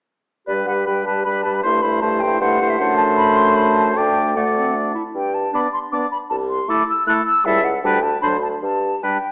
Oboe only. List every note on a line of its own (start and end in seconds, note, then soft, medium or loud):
0.48 0.67 B4 soft
0.68 0.86 B4 soft
0.86 1.06 B4 soft
1.07 1.24 B4 soft
1.25 1.43 B4 soft
1.44 1.63 B4 soft
1.63 1.82 C5 soft
1.83 2.01 C5 soft
2.02 2.21 C5 soft
2.23 2.41 C5 soft
2.41 2.60 C5 soft
2.62 2.79 C5 soft
2.80 3.98 C5 medium
3.97 4.36 D5 soft
4.37 4.94 D5 soft
5.55 5.69 D5 soft
5.94 6.07 D5 soft
6.70 6.83 A4 soft
7.09 7.22 A4 soft
7.47 7.60 A4 soft
7.86 7.99 B4 soft
8.23 8.37 C5 soft
9.03 9.17 B4 soft